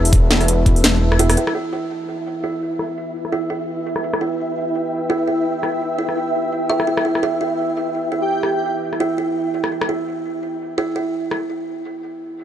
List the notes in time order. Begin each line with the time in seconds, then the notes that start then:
Already playing: E1 E4 B4 E5 A5
0.05 open hi-hat
0.13 kick, closed hi-hat
0.31 E4, snare, closed hi-hat
0.41 cross-stick, open hi-hat
0.48 closed hi-hat
0.66 E1, kick, closed hi-hat
0.76 open hi-hat
0.84 snare, closed hi-hat
1.12 cross-stick
1.19 E4, closed hi-hat
1.30 cross-stick, open hi-hat
1.37 E4, closed hi-hat
1.47 cross-stick
1.54 E4 E5
1.73 E4
1.87 B4
2.44 E4
2.57 E5
2.79 G5, cross-stick
3.25 cross-stick
3.32 E4
3.50 E4
3.96 cross-stick
4.13 cross-stick
4.21 E4
5.10 E4
5.28 E4
5.63 cross-stick
5.99 E4
6.09 cross-stick
6.70 E5
6.80 cross-stick
6.87 E4
6.97 cross-stick
7.05 E4
7.15 cross-stick
7.23 E4
7.41 E4
8.12 E4
8.22 G4
8.43 cross-stick
8.57 G4
8.65 G4
8.93 cross-stick
9.00 E4
9.18 E4
9.64 cross-stick
9.81 cross-stick
9.89 E4
10.78 E4
10.96 E4
11.31 cross-stick